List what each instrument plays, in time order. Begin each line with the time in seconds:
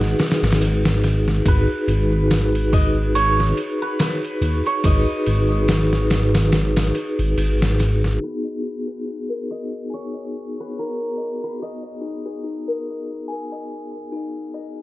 Already playing: detuned saw bass G#1, vibraphone D#4 F#4 G#4 B4, santur D#5 F#5
0.01 snare
0.19 snare, open hi-hat
0.31 snare, open hi-hat
0.42 detuned saw bass G#1, snare, open hi-hat
0.52 snare, open hi-hat
0.60 detuned saw bass G#1, ride
0.85 snare
1.04 snare, ride
1.28 snare
1.45 detuned saw bass G#1, vibraphone D#4 F#4 G#4 B4, santur B4, kick, ride
1.88 detuned saw bass G#1, ride
2.10 vibraphone D#4 F#4 G#4 B4
2.30 snare, open hi-hat
2.55 ride
2.73 santur D#5, kick, ride
3.15 santur C#5, ride
3.40 snare
3.57 ride
3.82 santur B4
3.99 santur B4, snare, ride
4.24 ride
4.41 detuned saw bass D#2, ride
4.66 santur C#5, ride
4.83 detuned saw bass G#1, vibraphone D#4 F#4 G#4 B4, santur D#5, kick, ride
5.26 detuned saw bass G#1, ride
5.49 vibraphone D#4 F#4 G#4 B4
5.68 snare, ride
5.93 snare
6.10 snare, open hi-hat
6.34 snare, open hi-hat
6.52 snare, open hi-hat
6.76 snare, open hi-hat
6.95 ride
7.19 detuned saw bass G#1, ride
7.37 detuned saw bass G#1, ride
7.62 snare
7.79 snare, ride
8.04 snare
8.20 vibraphone D#4 F#4 G#4, music box G#4, santur B4
8.25 vibraphone B3
8.45 music box D#5
8.63 music box D#4
8.87 music box G#4
9.06 music box D#4
9.29 music box A#4
9.51 santur D#5
9.90 santur C#5, music box G#5
10.14 music box D#5
10.60 santur B4
10.74 music box D#4
10.79 santur A#4
11.17 music box D#5
11.44 santur B4
11.60 music box G#4, santur D#5
11.83 music box D#5
12.01 music box D#4
12.26 music box G#4
12.44 music box D#4
12.68 music box A#4
13.28 music box G#5
13.52 music box D#5
14.12 music box D#4
14.54 music box D#5